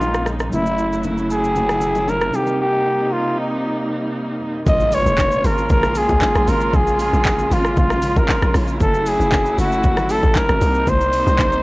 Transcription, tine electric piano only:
0, 0, Header, 1, 2, 480
1, 0, Start_track
1, 0, Tempo, 517241
1, 490, Time_signature, 4, 2, 24, 8
1, 10790, End_track
2, 0, Start_track
2, 0, Title_t, "Tine electric piano"
2, 0, Program_c, 0, 4
2, 0, Control_c, 0, 64, 127
2, 0, Note_on_c, 0, 46, 64
2, 0, Note_on_c, 0, 58, 55
2, 0, Note_on_c, 0, 60, 44
2, 0, Note_on_c, 0, 61, 55
2, 0, Note_on_c, 0, 70, 70
2, 438, Note_off_c, 0, 46, 0
2, 449, Note_off_c, 0, 58, 0
2, 461, Note_on_c, 0, 54, 64
2, 470, Note_off_c, 0, 70, 0
2, 471, Note_off_c, 0, 61, 0
2, 483, Note_on_c, 0, 61, 57
2, 502, Control_c, 0, 64, 0
2, 503, Note_on_c, 0, 64, 59
2, 510, Note_off_c, 0, 60, 0
2, 523, Note_on_c, 0, 57, 70
2, 639, Control_c, 0, 64, 127
2, 2122, Note_off_c, 0, 54, 0
2, 2132, Note_off_c, 0, 61, 0
2, 2139, Note_on_c, 0, 48, 63
2, 2143, Note_off_c, 0, 64, 0
2, 2153, Note_off_c, 0, 57, 0
2, 2160, Note_on_c, 0, 60, 55
2, 2180, Note_on_c, 0, 63, 55
2, 2183, Control_c, 0, 64, 0
2, 2202, Note_on_c, 0, 69, 56
2, 2246, Note_off_c, 0, 69, 0
2, 2260, Note_on_c, 0, 70, 69
2, 2358, Control_c, 0, 64, 127
2, 4037, Note_off_c, 0, 48, 0
2, 4048, Note_off_c, 0, 60, 0
2, 4058, Note_off_c, 0, 63, 0
2, 4098, Note_off_c, 0, 70, 0
2, 4341, Control_c, 0, 64, 0
2, 10790, End_track
0, 0, End_of_file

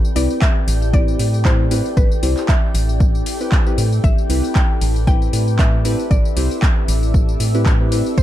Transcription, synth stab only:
0, 0, Header, 1, 2, 480
1, 0, Start_track
1, 0, Key_signature, 0, "minor"
1, 0, Tempo, 517241
1, 1827, Time_signature, 4, 2, 24, 8
1, 7637, End_track
2, 0, Start_track
2, 0, Title_t, "Synth stab"
2, 0, Program_c, 0, 62
2, 143, Note_on_c, 0, 60, 85
2, 146, Note_on_c, 0, 64, 82
2, 149, Note_on_c, 0, 67, 81
2, 152, Note_on_c, 0, 71, 98
2, 840, Note_off_c, 0, 60, 0
2, 841, Note_off_c, 0, 64, 0
2, 843, Note_off_c, 0, 67, 0
2, 845, Note_off_c, 0, 71, 0
2, 865, Note_on_c, 0, 60, 87
2, 867, Note_on_c, 0, 64, 80
2, 869, Note_on_c, 0, 67, 86
2, 870, Note_on_c, 0, 71, 97
2, 1321, Note_off_c, 0, 60, 0
2, 1322, Note_off_c, 0, 64, 0
2, 1323, Note_off_c, 0, 67, 0
2, 1323, Note_off_c, 0, 71, 0
2, 1345, Note_on_c, 0, 60, 80
2, 1346, Note_on_c, 0, 64, 75
2, 1348, Note_on_c, 0, 67, 74
2, 1349, Note_on_c, 0, 71, 91
2, 1518, Note_off_c, 0, 60, 0
2, 1519, Note_off_c, 0, 64, 0
2, 1520, Note_off_c, 0, 67, 0
2, 1521, Note_off_c, 0, 71, 0
2, 1585, Note_on_c, 0, 60, 103
2, 1586, Note_on_c, 0, 64, 92
2, 1588, Note_on_c, 0, 67, 96
2, 1589, Note_on_c, 0, 71, 112
2, 1758, Note_off_c, 0, 60, 0
2, 1759, Note_off_c, 0, 64, 0
2, 1760, Note_off_c, 0, 67, 0
2, 1761, Note_off_c, 0, 71, 0
2, 2065, Note_on_c, 0, 60, 75
2, 2066, Note_on_c, 0, 64, 70
2, 2068, Note_on_c, 0, 67, 68
2, 2069, Note_on_c, 0, 72, 87
2, 2330, Note_off_c, 0, 60, 0
2, 2330, Note_off_c, 0, 64, 0
2, 2331, Note_off_c, 0, 67, 0
2, 2332, Note_off_c, 0, 72, 0
2, 3160, Note_on_c, 0, 60, 78
2, 3161, Note_on_c, 0, 64, 74
2, 3163, Note_on_c, 0, 67, 73
2, 3164, Note_on_c, 0, 71, 84
2, 3369, Note_off_c, 0, 60, 0
2, 3369, Note_off_c, 0, 64, 0
2, 3370, Note_off_c, 0, 67, 0
2, 3371, Note_off_c, 0, 71, 0
2, 3400, Note_on_c, 0, 60, 78
2, 3402, Note_on_c, 0, 64, 73
2, 3403, Note_on_c, 0, 67, 69
2, 3405, Note_on_c, 0, 71, 89
2, 3555, Note_off_c, 0, 60, 0
2, 3556, Note_off_c, 0, 64, 0
2, 3556, Note_off_c, 0, 67, 0
2, 3557, Note_off_c, 0, 71, 0
2, 3983, Note_on_c, 0, 60, 84
2, 3986, Note_on_c, 0, 64, 76
2, 3989, Note_on_c, 0, 67, 79
2, 3992, Note_on_c, 0, 71, 96
2, 4680, Note_off_c, 0, 60, 0
2, 4682, Note_off_c, 0, 64, 0
2, 4683, Note_off_c, 0, 67, 0
2, 4684, Note_off_c, 0, 71, 0
2, 4706, Note_on_c, 0, 60, 88
2, 4707, Note_on_c, 0, 64, 79
2, 4709, Note_on_c, 0, 67, 80
2, 4710, Note_on_c, 0, 71, 96
2, 5161, Note_off_c, 0, 60, 0
2, 5162, Note_off_c, 0, 64, 0
2, 5163, Note_off_c, 0, 67, 0
2, 5164, Note_off_c, 0, 71, 0
2, 5186, Note_on_c, 0, 60, 80
2, 5187, Note_on_c, 0, 64, 75
2, 5189, Note_on_c, 0, 67, 74
2, 5190, Note_on_c, 0, 71, 93
2, 5359, Note_off_c, 0, 60, 0
2, 5360, Note_off_c, 0, 64, 0
2, 5361, Note_off_c, 0, 67, 0
2, 5361, Note_off_c, 0, 71, 0
2, 5426, Note_on_c, 0, 60, 97
2, 5427, Note_on_c, 0, 64, 96
2, 5429, Note_on_c, 0, 67, 89
2, 5430, Note_on_c, 0, 71, 111
2, 5599, Note_off_c, 0, 60, 0
2, 5600, Note_off_c, 0, 64, 0
2, 5601, Note_off_c, 0, 67, 0
2, 5601, Note_off_c, 0, 71, 0
2, 5906, Note_on_c, 0, 60, 75
2, 5907, Note_on_c, 0, 64, 71
2, 5909, Note_on_c, 0, 67, 69
2, 5910, Note_on_c, 0, 72, 85
2, 6170, Note_off_c, 0, 60, 0
2, 6171, Note_off_c, 0, 64, 0
2, 6172, Note_off_c, 0, 67, 0
2, 6173, Note_off_c, 0, 72, 0
2, 7000, Note_on_c, 0, 60, 95
2, 7002, Note_on_c, 0, 64, 92
2, 7003, Note_on_c, 0, 67, 89
2, 7005, Note_on_c, 0, 71, 109
2, 7209, Note_off_c, 0, 60, 0
2, 7210, Note_off_c, 0, 64, 0
2, 7210, Note_off_c, 0, 67, 0
2, 7211, Note_off_c, 0, 71, 0
2, 7240, Note_on_c, 0, 60, 83
2, 7242, Note_on_c, 0, 64, 73
2, 7243, Note_on_c, 0, 67, 76
2, 7245, Note_on_c, 0, 71, 90
2, 7331, Note_off_c, 0, 60, 0
2, 7331, Note_off_c, 0, 64, 0
2, 7332, Note_off_c, 0, 67, 0
2, 7333, Note_off_c, 0, 71, 0
2, 7346, Note_on_c, 0, 60, 85
2, 7347, Note_on_c, 0, 64, 81
2, 7349, Note_on_c, 0, 67, 80
2, 7351, Note_on_c, 0, 71, 98
2, 7519, Note_off_c, 0, 60, 0
2, 7520, Note_off_c, 0, 64, 0
2, 7521, Note_off_c, 0, 67, 0
2, 7522, Note_off_c, 0, 71, 0
2, 7637, End_track
0, 0, End_of_file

